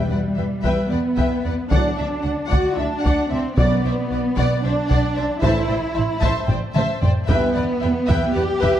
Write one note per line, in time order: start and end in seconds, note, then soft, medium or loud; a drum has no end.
0.00 0.60 E2 medium
0.00 0.89 G3 medium
0.10 0.19 E2 soft
0.10 0.18 B4 soft
0.10 0.18 D5 soft
0.10 0.19 F#5 soft
0.37 0.46 E2 soft
0.37 0.45 B4 soft
0.37 0.45 E5 soft
0.37 0.46 G5 soft
0.63 0.72 E2 soft
0.63 0.88 B4 medium
0.63 0.89 E5 soft
0.63 0.89 G5 soft
0.63 taiko medium
0.90 1.00 E2 soft
0.90 1.71 B3 medium
0.90 0.99 B4 soft
0.90 0.98 D5 soft
0.90 1.00 F#5 soft
1.17 1.26 E2 soft
1.17 1.43 B4 soft
1.17 1.42 E5 soft
1.17 1.42 G5 soft
1.17 taiko medium
1.45 1.53 E2 soft
1.45 1.53 B4 soft
1.45 1.53 D5 soft
1.45 1.54 F#5 soft
1.71 1.79 D2 medium
1.71 1.90 A2 soft
1.71 1.90 F#3 soft
1.71 2.50 D4 medium
1.71 1.90 A4 soft
1.71 1.90 D5 soft
1.71 1.96 D5 medium
1.71 1.96 F#5 soft
1.71 1.96 F#5 medium
1.71 taiko medium
1.98 2.07 D2 soft
1.98 2.07 D5 soft
1.98 2.06 E5 soft
1.98 2.07 E5 soft
2.24 2.33 D2 soft
2.24 2.33 D5 soft
2.24 2.32 F#5 soft
2.24 2.34 F#5 soft
2.49 2.60 D2 medium
2.49 2.78 F#4 medium
2.49 2.75 D5 soft
2.49 2.75 F#5 medium
2.49 2.76 F#5 medium
2.49 taiko medium
2.76 2.87 D2 soft
2.76 3.31 D4 medium
2.76 2.85 D5 soft
2.76 2.84 E5 soft
2.76 2.87 E5 soft
3.03 3.13 D2 medium
3.03 3.29 D5 soft
3.03 3.28 F#5 medium
3.03 taiko medium
3.08 3.31 F#5 soft
3.30 3.40 D2 soft
3.30 3.57 C4 medium
3.30 3.40 D5 soft
3.30 3.38 E5 soft
3.30 3.41 E5 soft
3.57 3.66 B1 medium
3.57 3.76 F#2 soft
3.57 4.33 B2 medium
3.57 3.76 F#3 soft
3.57 4.61 B3 medium
3.57 3.76 B4 soft
3.57 3.82 D5 soft
3.57 3.76 D5 medium
3.57 3.83 D5 medium
3.57 3.83 F#5 soft
3.57 taiko medium
3.85 3.93 B1 soft
3.85 3.93 C5 soft
3.85 3.94 D5 soft
3.85 3.93 E5 soft
4.11 4.19 B1 soft
4.11 4.20 D5 soft
4.11 4.20 F#5 soft
4.37 4.45 B1 medium
4.37 4.62 D5 medium
4.37 4.62 F#5 medium
4.37 taiko medium
4.64 4.72 B1 soft
4.64 5.42 D4 medium
4.64 4.72 C5 soft
4.64 4.73 D5 soft
4.64 4.72 E5 soft
4.90 4.98 B1 medium
4.90 5.15 D5 soft
4.90 5.14 F#5 medium
4.90 taiko medium
5.15 5.25 B1 soft
5.15 5.24 C5 soft
5.15 5.24 D5 soft
5.15 5.23 E5 soft
5.42 5.52 A1 medium
5.42 5.62 A2 medium
5.42 5.62 E3 medium
5.42 6.21 E4 medium
5.42 5.67 C5 medium
5.42 5.62 C5 medium
5.42 5.61 E5 medium
5.42 5.68 E5 medium
5.42 5.67 A5 medium
5.42 taiko medium
5.69 5.77 A1 soft
5.69 5.78 C5 soft
5.69 5.77 D5 soft
5.69 5.77 G5 soft
5.95 6.05 A1 soft
5.95 6.03 C5 soft
5.95 6.03 E5 soft
5.95 6.04 A5 soft
6.21 6.31 A1 medium
6.21 6.48 C5 medium
6.21 6.47 E5 medium
6.21 6.46 A5 medium
6.21 taiko medium
6.47 6.57 A1 medium
6.47 6.58 C5 medium
6.47 6.57 D5 soft
6.47 6.55 G5 soft
6.47 taiko low-mid medium
6.74 6.84 A1 medium
6.74 7.01 C5 medium
6.74 7.01 E5 medium
6.74 6.99 A5 soft
6.74 taiko mid medium
7.01 7.11 A1 medium
7.01 7.11 C5 medium
7.01 7.11 D5 medium
7.01 7.09 G5 medium
7.01 taiko low medium
7.28 7.37 E2 medium
7.28 7.48 G2 medium
7.28 7.48 E3 medium
7.28 8.31 B3 medium
7.28 7.47 B4 medium
7.28 7.54 B4 medium
7.28 7.47 E5 medium
7.28 7.53 E5 medium
7.28 7.53 G5 medium
7.28 taiko medium
7.54 7.64 E2 soft
7.54 7.64 B4 soft
7.54 7.62 D5 soft
7.54 7.63 F#5 medium
7.81 7.90 E2 soft
7.81 7.91 B4 soft
7.81 7.89 E5 medium
7.81 7.90 G5 soft
8.08 8.17 E2 medium
8.08 8.34 B4 medium
8.08 8.34 E5 medium
8.08 8.34 G5 medium
8.08 taiko medium
8.34 8.44 E2 medium
8.34 8.80 G4 medium
8.34 8.43 B4 medium
8.34 8.42 D5 medium
8.34 8.43 F#5 medium
8.61 8.71 E2 medium
8.61 8.80 B4 medium
8.61 8.80 E5 medium
8.61 8.80 G5 soft
8.61 taiko medium